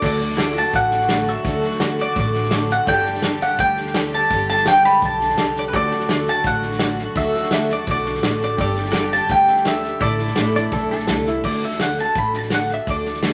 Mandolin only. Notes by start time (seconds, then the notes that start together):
0.06 D5
0.58 A5
0.75 F#5
1.29 E5
2.01 D5
2.19 D5
2.72 F#5
2.88 G5
3.42 F#5
3.60 G5
4.14 A5
4.50 A5
4.68 G5
4.85 B5
5.05 A5
5.59 D5
5.68 B4
5.76 D5
6.29 A5
6.47 F#5
7.17 E5
7.54 E5
7.73 D5
7.91 D5
8.44 D5
8.61 D5
9.13 A5
9.31 G5
9.67 E5
10.01 D5
11.45 D5
11.65 E5
11.82 F#5
12.00 A5
12.18 B5
12.36 A5
12.54 F#5
12.74 E5
12.90 D5